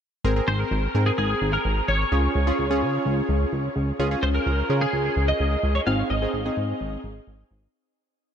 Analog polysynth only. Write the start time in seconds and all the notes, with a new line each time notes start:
0.24 C4 G#4 A#4
0.36 C4 G#4 A#4
0.95 C4 G#4 A#4
2.12 C#4 F4 G#4
2.47 C#4 F4 G#4
2.70 C#4 F4 G#4
4.00 C#4 F4 G#4
4.11 C#4 F4 G#4
4.70 C#4 F4 G#4
5.87 C4 D#4 G#4
6.22 C4 D#4 G#4
6.46 C4 D#4 G#4